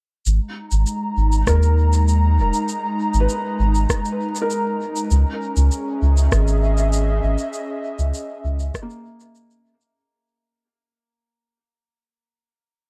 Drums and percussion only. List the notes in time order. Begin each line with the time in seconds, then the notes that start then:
0.26 shaker
0.71 shaker
0.87 shaker
1.32 shaker
1.47 kick, cross-stick, shaker
1.63 shaker
1.93 shaker
2.08 shaker
2.54 shaker
2.69 shaker
3.14 shaker
3.29 shaker
3.75 shaker
3.90 kick, cross-stick, shaker
4.05 shaker
4.36 shaker
4.50 shaker
4.96 shaker
5.11 shaker
5.57 shaker
5.72 shaker
6.17 shaker
6.32 kick, cross-stick, shaker
6.47 shaker
6.78 shaker
6.93 shaker
7.38 shaker
7.53 shaker
7.99 shaker
8.14 shaker
8.60 shaker
8.74 kick, cross-stick, shaker
8.90 shaker
9.20 shaker
9.35 shaker
9.51 shaker
9.81 shaker